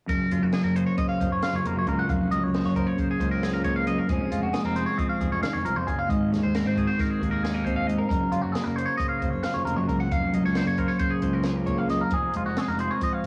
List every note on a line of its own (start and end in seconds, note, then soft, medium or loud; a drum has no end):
0.08 0.19 F#1 medium
0.08 1.86 F#2 medium
0.08 0.32 A#4 medium
0.08 kick loud
0.08 closed hi-hat medium
0.32 0.41 F#1 medium
0.32 2.31 F#3 medium
0.32 0.43 F4 medium
0.32 closed hi-hat medium
0.42 0.52 F#1 medium
0.42 0.54 F#4 medium
0.53 1.63 A#3 soft
0.53 0.64 G#4 medium
0.53 snare medium
0.53 closed hi-hat medium
0.64 0.84 F#1 medium
0.64 0.76 A#4 medium
0.76 1.19 C5 medium
0.76 0.86 C5 medium
0.76 closed hi-hat medium
0.87 0.98 C#5 medium
0.98 2.09 C#3 medium
0.98 1.08 D#5 medium
0.98 kick medium
0.98 closed hi-hat medium
1.09 1.31 F5 medium
1.20 1.30 F#1 medium
1.20 2.07 C5 medium
1.20 kick medium
1.20 closed hi-hat medium
1.31 1.40 F#1 medium
1.31 1.43 C#5 medium
1.42 2.12 F4 medium
1.42 1.54 F5 medium
1.42 snare medium
1.42 closed hi-hat medium
1.53 1.63 F#1 medium
1.53 1.67 C#5 medium
1.65 1.74 F1 medium
1.65 2.53 A#3 medium
1.65 1.77 A#4 medium
1.65 closed hi-hat medium
1.76 1.85 F#2 medium
1.76 1.88 C#5 medium
1.87 2.11 C#2 medium
1.87 2.08 F#2 medium
1.87 1.99 A#4 medium
1.87 kick medium
1.87 closed hi-hat medium
1.99 2.09 F#5 medium
2.09 2.28 F1 medium
2.09 3.86 F#2 medium
2.09 2.30 F5 medium
2.09 kick loud
2.09 closed hi-hat medium
2.31 2.41 C#2 medium
2.31 4.09 F#3 medium
2.31 2.43 D#5 medium
2.31 closed hi-hat medium
2.42 2.62 C#2 medium
2.42 2.54 C#5 medium
2.54 3.64 A#3 medium
2.54 2.65 C5 medium
2.54 snare loud
2.54 closed hi-hat medium
2.64 2.84 F#1 medium
2.64 2.75 C#5 medium
2.76 2.86 A#4 medium
2.76 3.19 C5 medium
2.76 kick medium
2.76 closed hi-hat soft
2.86 2.99 C#5 medium
2.96 4.08 C#3 medium
2.96 3.09 C5 medium
2.96 kick medium
2.96 closed hi-hat medium
3.10 3.31 G#4 medium
3.20 3.97 C#2 medium
3.20 4.06 C5 medium
3.20 kick medium
3.20 closed hi-hat medium
3.31 3.43 A#4 medium
3.43 4.07 F4 medium
3.43 3.53 G#4 medium
3.43 snare loud
3.43 closed hi-hat medium
3.53 3.64 A#4 medium
3.64 4.09 A#3 medium
3.64 3.75 C#5 medium
3.64 kick medium
3.64 closed hi-hat soft
3.76 3.87 F5 medium
3.87 4.09 F#2 medium
3.87 3.98 D#5 medium
3.87 closed hi-hat medium
3.98 4.09 A#4 medium
4.09 4.19 F1 medium
4.09 4.96 F3 medium
4.09 4.32 G#3 medium
4.09 4.54 C4 medium
4.09 6.11 C#4 medium
4.09 4.31 G#4 medium
4.09 4.76 G#4 medium
4.09 kick medium
4.09 closed hi-hat medium
4.31 4.41 F1 medium
4.31 5.86 G#3 medium
4.31 4.42 F4 medium
4.31 closed hi-hat medium
4.42 4.52 F1 medium
4.42 4.54 F#4 medium
4.53 4.65 A#3 medium
4.53 4.64 G#4 medium
4.53 snare loud
4.53 closed hi-hat medium
4.65 4.84 F1 medium
4.65 6.10 C4 soft
4.65 4.76 A#4 medium
4.76 5.20 G#4 medium
4.76 4.86 C5 medium
4.76 closed hi-hat medium
4.86 4.98 C#5 medium
4.97 5.42 F3 medium
4.97 5.09 D#5 medium
4.97 kick medium
4.97 closed hi-hat medium
5.09 5.31 F5 medium
5.21 5.30 F1 medium
5.21 6.07 G#4 medium
5.21 kick medium
5.21 closed hi-hat medium
5.32 5.41 F1 medium
5.32 5.42 C#5 medium
5.42 5.64 D#3 medium
5.42 5.53 F5 medium
5.42 snare loud
5.42 closed hi-hat medium
5.53 5.64 F1 medium
5.53 5.64 C#5 medium
5.64 5.75 C2 medium
5.64 5.87 F3 medium
5.64 5.76 A#4 medium
5.64 closed hi-hat medium
5.76 5.86 F2 medium
5.76 5.87 C5 medium
5.86 6.10 F#1 medium
5.86 6.09 F#3 medium
5.86 5.98 G#4 medium
5.86 kick medium
5.86 closed hi-hat medium
5.99 6.09 F5 medium
6.08 6.29 G#1 medium
6.08 7.87 G#2 medium
6.08 6.32 D#5 medium
6.08 kick loud
6.08 closed hi-hat medium
6.32 6.42 D#2 medium
6.32 8.08 G#3 medium
6.32 6.43 C#5 medium
6.32 snare soft
6.32 closed hi-hat medium
6.43 6.63 D#2 medium
6.43 6.55 C5 medium
6.54 6.65 A#3 medium
6.54 6.66 A#4 medium
6.54 snare medium
6.54 closed hi-hat medium
6.65 6.85 G#1 medium
6.65 7.65 C4 soft
6.65 6.77 C5 medium
6.76 7.19 F#4 medium
6.76 6.88 G#4 medium
6.76 kick medium
6.76 closed hi-hat soft
6.87 7.00 C5 medium
6.98 8.07 D#3 medium
6.98 7.10 A#4 medium
6.98 kick medium
6.98 snare soft
6.98 closed hi-hat medium
7.10 7.31 G#4 medium
7.19 7.98 D#2 medium
7.19 7.32 F#4 soft
7.19 kick medium
7.19 closed hi-hat medium
7.31 8.10 G#4 soft
7.31 7.43 A#4 medium
7.43 7.54 C#4 medium
7.43 7.54 G#4 medium
7.43 snare medium
7.43 closed hi-hat medium
7.54 8.10 D#4 soft
7.54 7.64 A#4 medium
7.64 8.08 C4 medium
7.64 7.76 C5 medium
7.64 kick medium
7.64 closed hi-hat medium
7.76 7.87 F5 medium
7.87 8.08 G#2 medium
7.87 7.99 D#5 medium
7.87 closed hi-hat medium
7.98 8.08 A#4 medium
8.09 8.20 F#1 medium
8.09 9.87 F#2 medium
8.09 8.32 A#4 medium
8.09 kick loud
8.09 closed hi-hat medium
8.32 8.42 F#1 medium
8.32 10.32 F#3 medium
8.32 8.42 F4 medium
8.32 closed hi-hat medium
8.42 8.53 F#1 medium
8.42 8.52 F#4 medium
8.52 9.66 A#3 medium
8.52 8.65 G#4 medium
8.52 snare loud
8.52 closed hi-hat medium
8.64 8.85 F#1 medium
8.64 8.76 A#4 medium
8.76 8.88 C5 medium
8.76 9.21 C5 medium
8.76 closed hi-hat medium
8.86 8.97 C#5 medium
8.98 10.11 C#3 medium
8.98 9.08 D#5 medium
8.98 kick medium
8.98 closed hi-hat medium
9.09 9.30 F5 medium
9.22 9.32 F#1 medium
9.22 10.09 C5 medium
9.22 kick medium
9.22 closed hi-hat medium
9.30 9.43 F#1 medium
9.30 9.43 C#5 medium
9.43 10.14 F4 medium
9.43 9.55 F5 medium
9.43 snare loud
9.43 closed hi-hat medium
9.54 9.65 F#1 medium
9.54 9.65 C#5 medium
9.65 9.76 F1 medium
9.65 10.54 A#3 soft
9.65 9.76 A#4 medium
9.65 closed hi-hat medium
9.76 9.87 F#2 medium
9.76 9.88 C#5 medium
9.88 10.13 C#2 medium
9.88 10.10 F#2 medium
9.88 10.00 A#4 medium
9.88 kick medium
9.88 closed hi-hat medium
10.00 10.11 F#5 medium
10.11 10.31 F1 medium
10.11 11.88 F#2 medium
10.11 10.34 F5 medium
10.11 kick loud
10.11 closed hi-hat medium
10.33 10.42 C#2 medium
10.33 12.12 F#3 medium
10.33 10.45 D#5 medium
10.33 closed hi-hat medium
10.43 10.63 C#2 medium
10.43 10.57 C#5 medium
10.55 11.67 A#3 medium
10.55 10.67 C5 medium
10.55 snare loud
10.55 closed hi-hat medium
10.65 10.85 F#1 medium
10.65 10.79 C#5 medium
10.78 10.90 A#4 medium
10.78 11.21 C5 medium
10.78 kick medium
10.78 closed hi-hat soft
10.88 10.99 C#5 medium
10.99 12.12 C#3 medium
10.99 11.11 C5 medium
10.99 kick medium
10.99 closed hi-hat medium
11.11 11.33 G#4 medium
11.22 12.01 C#2 medium
11.22 12.10 C5 medium
11.22 kick medium
11.22 closed hi-hat medium
11.33 11.44 A#4 medium
11.43 12.82 F4 medium
11.43 11.56 G#4 medium
11.43 snare loud
11.43 closed hi-hat medium
11.56 11.68 A#4 medium
11.66 12.13 A#3 medium
11.66 11.78 C#5 medium
11.66 kick medium
11.66 closed hi-hat medium
11.78 11.90 F5 medium
11.89 12.12 F#2 medium
11.89 12.02 D#5 medium
11.89 snare soft
11.89 closed hi-hat medium
12.01 12.13 A#4 medium
12.11 12.22 F1 medium
12.11 13.02 F3 medium
12.11 12.36 G#4 medium
12.11 kick loud
12.11 closed hi-hat medium
12.33 12.44 F1 medium
12.33 13.27 G#3 medium
12.33 12.46 F4 medium
12.33 closed hi-hat medium
12.46 12.56 F1 medium
12.46 12.58 F#4 medium
12.57 13.27 C4 soft
12.57 12.69 G#4 medium
12.57 snare loud
12.57 closed hi-hat medium
12.68 12.88 F1 medium
12.68 12.80 A#4 medium
12.79 12.91 F#4 medium
12.79 12.92 C5 medium
12.79 closed hi-hat medium
12.91 13.24 G#4 soft
12.91 13.02 C#5 medium
13.01 13.27 F3 medium
13.01 13.13 D#5 medium
13.01 kick medium
13.01 closed hi-hat medium
13.13 13.27 F5 medium